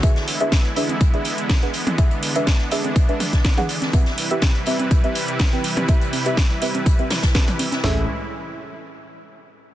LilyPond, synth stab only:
\new Staff \with { instrumentName = "Synth stab" } { \time 4/4 \key e \mixolydian \tempo 4 = 123 <d' gis' b' e''>8. <d' gis' b' e''>16 r8 <d' gis' b' e''>8. <d' gis' b' e''>16 r8. <d' gis' b' fis''>16 r8 | <d' gis' b' e''>8. <d' gis' b' e''>16 r8 <d' gis' b' e''>8. <d' gis' b' e''>16 r8. <d' gis' b' fis''>16 r8 | <c' g' b' e''>8. <c' g' b' e''>16 r8 <c' g' b' e''>8. <c' g' b' e''>16 r8. <c' g' b' g''>16 r8 | <c' g' b' e''>8. <c' g' b' e''>16 r8 <c' g' b' e''>8. <c' g' b' e''>16 r8 <c' g' b' a''>16 r8. |
<cis' gis' a' e''>8 r2. r8 | }